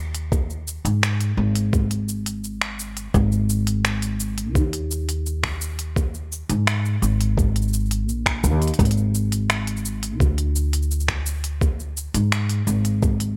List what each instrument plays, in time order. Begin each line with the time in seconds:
Already playing: upright bass D#2
0.15 open hi-hat, cabasa
0.32 kick, cabasa
0.50 cabasa
0.68 cabasa
0.85 upright bass G#2, open hi-hat, cabasa
1.03 finger snap, cabasa
1.21 open hi-hat, cabasa
1.37 upright bass G#1
1.55 open hi-hat, cabasa
1.73 kick, cabasa
1.91 open hi-hat, cabasa
2.09 cabasa
2.26 open hi-hat, cabasa
2.44 cabasa
2.61 finger snap, cabasa
2.79 cabasa
2.97 open hi-hat, cabasa
3.14 upright bass G#1, kick, cabasa
3.32 cabasa
3.50 cabasa
3.67 open hi-hat, cabasa
3.85 finger snap, cabasa
4.02 open hi-hat, cabasa
4.20 cabasa
4.38 open hi-hat, cabasa
4.55 upright bass D#2, kick, cabasa
4.73 open hi-hat, cabasa
4.91 cabasa
5.09 open hi-hat, cabasa
5.26 cabasa
5.43 finger snap, kick, cabasa
5.46 cabasa
5.48 cabasa
5.50 cabasa
5.53 cabasa
5.55 cabasa
5.57 cabasa
5.59 cabasa
5.61 cabasa
5.79 open hi-hat, cabasa
5.96 kick, cabasa
6.14 cabasa
6.32 cabasa
6.49 upright bass G#2, open hi-hat, cabasa
6.67 finger snap, cabasa
6.85 cabasa
7.02 upright bass G#1, cabasa
7.21 open hi-hat, cabasa
7.38 kick, cabasa
7.56 open hi-hat, cabasa
7.62 cabasa
7.68 cabasa
7.74 cabasa
7.86 cabasa
7.91 open hi-hat, cabasa
8.08 upright bass A#1, cabasa
8.26 finger snap, kick, cabasa
8.44 upright bass D#2, cabasa
8.62 open hi-hat, cabasa
8.68 open hi-hat
8.74 open hi-hat
8.79 upright bass G#1, kick, open hi-hat, cabasa
8.85 open hi-hat
8.91 open hi-hat
8.97 cabasa
9.15 cabasa
9.32 open hi-hat, cabasa
9.50 finger snap, cabasa
9.67 open hi-hat
9.77 cabasa
9.85 cabasa
10.03 open hi-hat, cabasa
10.20 upright bass D2, kick, cabasa
10.38 open hi-hat, cabasa
10.56 cabasa
10.73 open hi-hat, cabasa
10.82 cabasa
10.91 cabasa
11.00 cabasa
11.08 finger snap, kick, cabasa
11.26 cabasa
11.44 open hi-hat, cabasa
11.61 kick, cabasa
11.80 cabasa
11.97 cabasa
12.14 upright bass G#2, open hi-hat, cabasa
12.32 finger snap, cabasa
12.49 open hi-hat, cabasa
12.67 upright bass G#1, cabasa
12.85 open hi-hat, cabasa
13.03 kick, cabasa
13.20 open hi-hat, cabasa